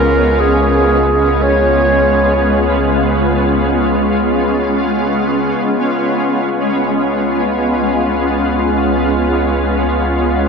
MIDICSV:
0, 0, Header, 1, 5, 480
1, 0, Start_track
1, 0, Tempo, 500000
1, 10066, End_track
2, 0, Start_track
2, 0, Title_t, "Clarinet"
2, 0, Program_c, 0, 71
2, 0, Note_on_c, 0, 70, 84
2, 376, Note_on_c, 0, 68, 82
2, 391, Note_off_c, 0, 70, 0
2, 1370, Note_on_c, 0, 73, 87
2, 1384, Note_off_c, 0, 68, 0
2, 2847, Note_off_c, 0, 73, 0
2, 10066, End_track
3, 0, Start_track
3, 0, Title_t, "Ambient pad"
3, 0, Program_c, 1, 92
3, 0, Note_on_c, 1, 56, 66
3, 0, Note_on_c, 1, 59, 81
3, 0, Note_on_c, 1, 61, 82
3, 0, Note_on_c, 1, 65, 70
3, 10066, Note_off_c, 1, 56, 0
3, 10066, Note_off_c, 1, 59, 0
3, 10066, Note_off_c, 1, 61, 0
3, 10066, Note_off_c, 1, 65, 0
3, 10066, End_track
4, 0, Start_track
4, 0, Title_t, "Synth drone"
4, 0, Program_c, 2, 95
4, 0, Note_on_c, 2, 49, 74
4, 0, Note_on_c, 2, 56, 66
4, 5483, Note_off_c, 2, 56, 0
4, 5485, Note_off_c, 2, 49, 0
4, 10066, End_track
5, 0, Start_track
5, 0, Title_t, "Analog synth bass"
5, 0, Program_c, 3, 38
5, 0, Note_on_c, 3, 37, 78
5, 5330, Note_off_c, 3, 37, 0
5, 5376, Note_on_c, 3, 37, 76
5, 10066, Note_off_c, 3, 37, 0
5, 10066, End_track
0, 0, End_of_file